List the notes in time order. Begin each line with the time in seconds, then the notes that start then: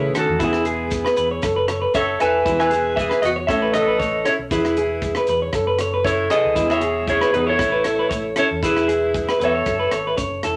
Already playing: A1 C#3 A3 C#4 E4 G#4 B4 C#5
0.14 D#3 F#4 A4, cross-stick, closed hi-hat, maracas
0.19 C#4 A4
0.28 E2
0.39 E1 E3 G#3 B3 E4, kick, maracas
0.44 G#4
0.53 cross-stick
0.65 G#4, muted nylon-string guitar stroke, closed hi-hat, maracas
0.91 G#3, kick, maracas
1.05 B4, cross-stick
1.16 E1 B3 B4, closed hi-hat, maracas
1.31 C#5
1.42 F#1 F#3 A4, kick, cross-stick, maracas
1.56 B4
1.68 A4 C#5, cross-stick, closed hi-hat, maracas
1.82 B4
1.94 F#1 C#4 A4 C#5 E5, kick, maracas
2.20 E1 E4 A4 B4 E5 G#5, cross-stick, closed hi-hat
2.45 E1 E3 G#3 B3 E4, kick, maracas
2.49 G#4
2.60 B4 E5 G#5, cross-stick
2.70 G#4, closed hi-hat, maracas
2.96 G#3 B4 E5, kick, maracas
3.00 G#4
3.10 B4, cross-stick
3.22 E1 B3 F#4 B4 D#5, muted clean electric guitar stroke, closed hi-hat, maracas
3.36 C#5
3.47 A1 A2 A3 C#4 E4 A4 C#5 E5, kick, cross-stick, maracas
3.52 A4
3.62 B4
3.73 A4 B4 C#5 D#5, cross-stick, closed hi-hat, maracas
3.87 B4
3.99 A3 C#5, kick, maracas
4.25 C#4 E4 A4 C#5, cross-stick, closed hi-hat, maracas
4.39 B1
4.51 E1 E3 E4 G#4 B4, kick, maracas
4.65 cross-stick
4.77 G#4, closed hi-hat, maracas
5.02 G#3, kick, maracas
5.15 B4, cross-stick
5.27 E1 B4, closed hi-hat, maracas
5.42 C#5
5.53 F#1 F#3 A4, kick, cross-stick, maracas
5.67 B4
5.79 A4 C#5, cross-stick, closed hi-hat, maracas
5.94 B4
6.04 C#4 E4 A4 C#5, kick, maracas
6.30 E4 G#4 A4 B4 D#5, cross-stick, closed hi-hat, maracas
6.45 C#2
6.55 E1 E3 G#3 B3 E4, kick, maracas
6.60 G#4
6.69 G#4 C#5 E5, cross-stick
6.81 G#4, closed hi-hat, maracas
7.06 G#3 E4 G#4 C#5, kick, maracas
7.21 B4, cross-stick
7.33 E1 B3 D#4 G#4 B4, closed hi-hat
7.46 E4 A4 C#5
7.59 A1 A2 E4, kick, cross-stick, maracas
7.72 B4
7.84 A4 C#5, cross-stick, closed hi-hat, maracas
7.99 B4
8.10 A3 C#5, kick, maracas
8.36 C#4 E4 A4 C#5, cross-stick, closed hi-hat, maracas
8.51 E2
8.62 E1 E3 E4 G#4 B4, kick, maracas
8.77 cross-stick
8.88 G#4, muted nylon-string guitar stroke, closed hi-hat, maracas
9.14 G#3, kick, maracas
9.29 B4, cross-stick
9.40 E1 B3 A4 B4 C#5, closed hi-hat, maracas
9.45 E5
9.55 C#5
9.66 F#1 F#3 A4, kick, cross-stick, maracas
9.79 B4
9.91 G#1 A4 C#5, cross-stick, closed hi-hat, maracas
10.07 B4
10.17 F#1 C#4 C#5, kick, maracas
10.43 E1 E4 A4, cross-stick, closed hi-hat, maracas